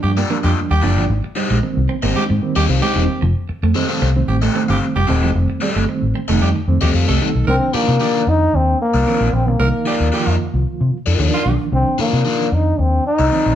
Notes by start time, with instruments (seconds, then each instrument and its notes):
Already playing: reed electric piano F3 G3 A#3 D4
0.03 fingered electric bass G2, tenor saxophone G4, muted clean electric guitar stroke
0.17 clean electric guitar A#3, overdriven electric guitar A#3 F4 G4 D5
0.30 reed electric piano F3 G3 A#3 D4, clean electric guitar A#3
0.43 fingered electric bass F2, overdriven electric guitar A#3 F4 G4 D#5, tenor saxophone G4
0.71 fingered electric bass D#2, clean electric guitar G3, tenor saxophone G4
0.82 fingered electric bass F#1, reed electric piano F3 G3 A#3 D4, overdriven electric guitar A#3 F4 G4 D5, muted clean electric guitar stroke
0.98 fingered electric bass G1, clean electric guitar F3
1.10 fingered electric bass G#1
1.24 muted clean electric guitar stroke
1.35 clean electric guitar G3, overdriven electric guitar D#4 G4 C5 D#5
1.51 fingered electric bass A#1, clean electric guitar G#3
1.63 reed electric piano D#3 G3 A#3 C4, muted clean electric guitar stroke
1.77 fingered electric bass C2
1.89 clean electric guitar C4
2.03 fingered electric bass G#1, reed electric piano D#3 G3 A#3 C4, clean electric guitar A#3, overdriven electric guitar D#4 G4 C5 D#5
2.16 clean electric guitar G#3, tenor saxophone G4, muted fingered electric bass stroke
2.30 fingered electric bass G#2, muted clean electric guitar stroke
2.42 reed electric piano D#3 G3 A#3 C4
2.56 fingered electric bass D#2, clean electric guitar G3, overdriven electric guitar D#4 G4 C5 D#5, tenor saxophone G4
2.68 fingered electric bass C2, overdriven electric guitar D#4 G4 C5 F5, muted clean electric guitar stroke
2.82 clean electric guitar G#3, overdriven electric guitar D#4 G4 C5 D#5, tenor saxophone G4
2.95 fingered electric bass E1, reed electric piano D#3 G3 A#3 C4, clean electric guitar G3
3.22 fingered electric bass F1, clean electric guitar F3
3.49 muted clean electric guitar stroke, muted fingered electric bass stroke
3.63 fingered electric bass F2, clean electric guitar A3
3.75 reed electric piano D#3 G3 A3 C4, overdriven electric guitar C4 G4 A4 D#5, muted clean electric guitar stroke
3.89 clean electric guitar C4, overdriven electric guitar C4 G4 A4 F5
4.02 fingered electric bass C2, clean electric guitar C4
4.16 reed electric piano D#3 G3 A3 C4
4.28 fingered electric bass A1, tenor saxophone G4, muted clean electric guitar stroke
4.42 clean electric guitar A3, overdriven electric guitar C4 G4 A4 D#5
4.55 reed electric piano D#3 G3 A3 C4, clean electric guitar A3
4.68 fingered electric bass G1, overdriven electric guitar C4 G4 A4 F5, tenor saxophone G4
4.96 fingered electric bass F1, clean electric guitar G3, tenor saxophone G4
5.07 fingered electric bass D#1, reed electric piano D#3 G3 A3 C4, overdriven electric guitar C4 G4 A4 D#5, muted clean electric guitar stroke
5.23 fingered electric bass E1, clean electric guitar F3
5.35 fingered electric bass F1
5.50 muted clean electric guitar stroke
5.61 clean electric guitar G3, overdriven electric guitar C4 G4 A4 D#5
5.76 fingered electric bass G1, clean electric guitar A3
5.88 reed electric piano D#3 G3 A3 C4, muted clean electric guitar stroke
6.02 fingered electric bass A1
6.15 clean electric guitar C4
6.28 fingered electric bass F1, reed electric piano D#3 G3 A3 D#4, clean electric guitar A3, overdriven electric guitar C4 G4 A4 D#5
6.42 fingered electric bass F2, clean electric guitar G3, tenor saxophone G4
6.56 muted clean electric guitar stroke
6.68 fingered electric bass F2, reed electric piano D#3 G3 A3 C4
6.81 fingered electric bass D#2, clean electric guitar F3, overdriven electric guitar C4 G4 A4 D#5, tenor saxophone G4
6.94 fingered electric bass F2, overdriven electric guitar C4 G4 A4 F5, muted clean electric guitar stroke
7.08 fingered electric bass C2, clean electric guitar A3, overdriven electric guitar C4 G4 A4 D#5, tenor saxophone A4
7.21 reed electric piano D#3 G3 A3 D#4, clean electric guitar G3
7.35 fingered electric bass B1
7.47 fingered electric bass C2, reed electric piano D3 F3 A#3 D4, trombone C4, tenor saxophone A#4
7.54 reed electric piano D#3
7.74 trombone A#3, overdriven electric guitar D#4 F4 A#4 D5, tenor saxophone G4, muted fingered electric bass stroke
7.88 fingered electric bass C3
8.00 reed electric piano D#3 F3 A#3 D4, overdriven electric guitar D#4 F4 A#4 D5, tenor saxophone G4
8.27 fingered electric bass F2, trombone D#4
8.54 fingered electric bass D#2, trombone C4
8.82 trombone A#3
8.94 fingered electric bass C2, overdriven electric guitar D#4 F4 A#4 D5
9.06 reed electric piano D#3 F3 A#3 C4, overdriven electric guitar D#4 F4 A#4 D5, tenor saxophone A#4
9.21 fingered electric bass A#1
9.33 fingered electric bass A#1, reed electric piano D#3 F3 A#3 C4, trombone C4
9.47 fingered electric bass B1, trombone A#3
9.59 fingered electric bass C2, reed electric piano D#3 F3 A#3 D#4, tenor saxophone A#4
9.86 overdriven electric guitar D#4 F4 A#4 D5, tenor saxophone G4
10.00 fingered electric bass D#2
10.12 reed electric piano D#3 F3 A#3 F4, overdriven electric guitar D#4 F4 A#4 D#5, tenor saxophone G4
10.27 fingered electric bass F2
10.54 fingered electric bass C2
10.66 muted fingered electric bass stroke
10.81 fingered electric bass C3
11.06 fingered electric bass F2, overdriven electric guitar D#4 F4 A#4 D#5
11.19 fingered electric bass D#2, reed electric piano D#3 F3 A#3 D4, overdriven electric guitar D#4 F4 A#4 D5
11.34 tenor saxophone F4
11.46 fingered electric bass B1, reed electric piano D#3 F3 A#3 D4
11.72 fingered electric bass C2, reed electric piano D#3 F3 A#3 D4, trombone C4
11.98 trombone A#3, overdriven electric guitar D#4 F4 A#4 D5, muted fingered electric bass stroke
12.13 fingered electric bass C3
12.25 reed electric piano D#3 F3 A#3 D4, overdriven electric guitar D#4 F4 A#4 D5
12.52 fingered electric bass F2, trombone D#4
12.79 fingered electric bass D#2, trombone C4
13.07 trombone D#4
13.19 fingered electric bass C2, overdriven electric guitar D#4 F4 A#4 D5
13.31 reed electric piano D#3 F3 A#3 C4, overdriven electric guitar D#4 F4 A#4 D5
13.46 fingered electric bass A#1